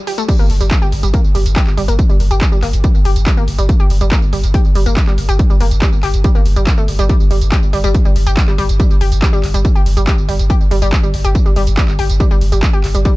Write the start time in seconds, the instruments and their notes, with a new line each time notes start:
0.07 synth arpeggio sound G4, open hi-hat
0.18 synth arpeggio sound A3, closed hi-hat, tambourine
0.28 synth arpeggio sound G3, kick, closed hi-hat, crash, tambourine
0.39 sub bass G1, synth arpeggio sound A#3, tambourine
0.50 sub bass G1, open hi-hat
0.61 sub bass G1, synth arpeggio sound G3, closed hi-hat, tambourine
0.71 kick, clap, closed hi-hat, tambourine
0.82 sub bass G1, synth arpeggio sound G4, tambourine
0.92 sub bass G1, open hi-hat
1.03 sub bass G1, synth arpeggio sound G3, closed hi-hat, tambourine
1.14 synth arpeggio sound A#3, kick, closed hi-hat, tambourine
1.24 sub bass G1, tambourine
1.35 sub bass G1, synth arpeggio sound G3, open hi-hat
1.46 sub bass G1, closed hi-hat, tambourine
1.56 synth arpeggio sound G4, kick, clap, closed hi-hat, tambourine
1.67 sub bass G1, clap, tambourine
1.77 sub bass G1, synth arpeggio sound G3, open hi-hat
1.88 sub bass G1, synth arpeggio sound A#3, closed hi-hat, tambourine
1.99 kick, closed hi-hat, tambourine
2.10 sub bass G1, synth arpeggio sound G3, tambourine
2.20 sub bass G1, open hi-hat
2.31 sub bass G1, synth arpeggio sound G4, closed hi-hat, tambourine
2.41 kick, clap, closed hi-hat, tambourine
2.52 sub bass G1, synth arpeggio sound G3, tambourine
2.63 sub bass G1, synth arpeggio sound A#3, clap, open hi-hat
2.73 sub bass G1, closed hi-hat, tambourine
2.84 synth arpeggio sound G3, kick, closed hi-hat, tambourine
2.95 sub bass G1, tambourine
3.05 sub bass G1, synth arpeggio sound G4, open hi-hat
3.16 sub bass G1, closed hi-hat, tambourine
3.26 synth arpeggio sound G3, kick, clap, closed hi-hat, tambourine
3.37 sub bass G1, synth arpeggio sound A#3, tambourine
3.48 sub bass G1, open hi-hat
3.59 sub bass G1, synth arpeggio sound G3, closed hi-hat, tambourine
3.69 kick, closed hi-hat, tambourine
3.80 sub bass G1, synth arpeggio sound G4, tambourine
3.90 sub bass G1, open hi-hat
4.01 sub bass G1, synth arpeggio sound G3, closed hi-hat, tambourine
4.12 synth arpeggio sound A#3, kick, clap, closed hi-hat, tambourine
4.22 sub bass G1, tambourine
4.33 sub bass G1, synth arpeggio sound G3, open hi-hat
4.44 sub bass G1, closed hi-hat, tambourine
4.54 synth arpeggio sound G4, kick, closed hi-hat, tambourine
4.65 sub bass G1, tambourine
4.75 sub bass G1, synth arpeggio sound G3, open hi-hat
4.86 sub bass G1, synth arpeggio sound A#3, closed hi-hat, tambourine
4.97 kick, clap, closed hi-hat, tambourine
5.07 sub bass G1, synth arpeggio sound G3, clap, tambourine
5.18 sub bass G1, open hi-hat
5.29 sub bass G1, synth arpeggio sound G4, closed hi-hat, tambourine
5.39 kick, closed hi-hat, tambourine
5.50 sub bass G1, synth arpeggio sound G3, tambourine
5.60 sub bass G1, synth arpeggio sound A#3, open hi-hat
5.71 sub bass G1, closed hi-hat, tambourine
5.82 synth arpeggio sound G3, kick, clap, closed hi-hat, tambourine
5.93 sub bass G1, tambourine
6.03 sub bass G1, synth arpeggio sound G4, clap, open hi-hat
6.14 sub bass G1, closed hi-hat, tambourine
6.24 synth arpeggio sound G3, kick, closed hi-hat, tambourine
6.35 sub bass G1, synth arpeggio sound A#3, tambourine
6.46 sub bass G1, open hi-hat
6.56 sub bass G1, synth arpeggio sound G3, closed hi-hat, tambourine
6.67 kick, clap, closed hi-hat, tambourine
6.78 sub bass G1, synth arpeggio sound A3, tambourine
6.88 sub bass G1, open hi-hat
6.99 sub bass G1, synth arpeggio sound G3, closed hi-hat, tambourine
7.09 synth arpeggio sound G3, kick, closed hi-hat, tambourine
7.20 sub bass G1, tambourine
7.31 sub bass G1, synth arpeggio sound G3, open hi-hat
7.41 sub bass G1, closed hi-hat, tambourine
7.52 synth arpeggio sound G4, kick, clap, closed hi-hat, tambourine
7.63 sub bass G1, tambourine
7.73 sub bass G1, synth arpeggio sound G3, open hi-hat
7.84 sub bass G1, synth arpeggio sound G3, closed hi-hat, tambourine
7.95 kick, closed hi-hat, tambourine
8.05 sub bass G1, synth arpeggio sound G3, tambourine
8.16 sub bass G1, open hi-hat
8.27 sub bass G1, synth arpeggio sound G4, closed hi-hat, tambourine
8.37 kick, clap, closed hi-hat, tambourine
8.48 sub bass G1, synth arpeggio sound G3, clap, tambourine
8.58 sub bass G1, synth arpeggio sound G3, open hi-hat
8.69 sub bass G1, closed hi-hat, tambourine
8.80 synth arpeggio sound G3, kick, closed hi-hat, tambourine
8.90 sub bass G1, tambourine
9.01 sub bass G1, synth arpeggio sound G4, open hi-hat
9.12 sub bass G1, closed hi-hat, tambourine
9.22 synth arpeggio sound G3, kick, clap, closed hi-hat, tambourine
9.33 sub bass G1, synth arpeggio sound G3, tambourine
9.44 sub bass G1, clap, open hi-hat
9.54 sub bass G1, synth arpeggio sound G3, closed hi-hat, tambourine
9.65 kick, closed hi-hat, tambourine
9.75 sub bass G1, synth arpeggio sound G4, tambourine
9.86 sub bass G1, open hi-hat
9.97 sub bass G1, synth arpeggio sound G3, closed hi-hat, tambourine
10.07 synth arpeggio sound G3, kick, clap, closed hi-hat, tambourine
10.18 sub bass G1, tambourine
10.29 sub bass G1, synth arpeggio sound G3, open hi-hat
10.39 sub bass G1, closed hi-hat, tambourine
10.50 synth arpeggio sound G4, kick, closed hi-hat, tambourine
10.61 sub bass G1, tambourine
10.71 sub bass G1, synth arpeggio sound G3, open hi-hat
10.82 sub bass G1, synth arpeggio sound G3, closed hi-hat, tambourine
10.92 kick, clap, closed hi-hat, tambourine
11.03 sub bass G1, synth arpeggio sound G3, tambourine
11.14 sub bass G1, open hi-hat
11.24 sub bass G1, synth arpeggio sound G4, closed hi-hat, tambourine
11.35 kick, closed hi-hat, tambourine
11.46 sub bass G1, synth arpeggio sound G3, tambourine
11.56 sub bass G1, synth arpeggio sound G3, open hi-hat
11.67 sub bass G1, closed hi-hat, tambourine
11.77 synth arpeggio sound G3, kick, clap, closed hi-hat, tambourine
11.88 sub bass G1, clap, tambourine
11.99 sub bass G1, synth arpeggio sound G4, open hi-hat
12.10 sub bass G1, closed hi-hat, tambourine
12.20 synth arpeggio sound G3, kick, closed hi-hat, tambourine
12.31 sub bass G1, synth arpeggio sound G3, tambourine
12.41 sub bass G1, open hi-hat
12.52 sub bass G1, synth arpeggio sound G3, closed hi-hat, tambourine
12.63 kick, clap, closed hi-hat, tambourine
12.73 sub bass G1, synth arpeggio sound G4, tambourine
12.84 sub bass G1, clap, open hi-hat
12.95 sub bass G1, synth arpeggio sound G3, closed hi-hat, tambourine
13.05 synth arpeggio sound G3, kick, closed hi-hat, tambourine